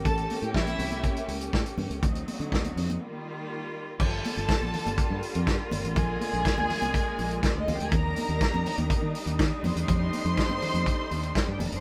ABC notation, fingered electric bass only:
X:1
M:4/4
L:1/16
Q:1/4=122
K:Gm
V:1 name="Fingered electric bass" clef=bass
A,,,2 z A,, B,,,2 C,,3 z ^C,,2 A,, z G,, C,, | D,,2 z D, D,,2 F,,2 z8 | G,,,2 z G,,, z B,,, z G,,, z G,, z F,, G,, z G,,, A,,, | B,,,2 z B,,, z D,, z C,, z2 B,,,2 z D,, ^C,, D,, |
E,,2 z E,, z F,, z E,, z E, z E,, E, z F,, =E,, | F,,2 z F,, z G,, z F,, z2 E,,2 z G,, F,,, ^F,,, |]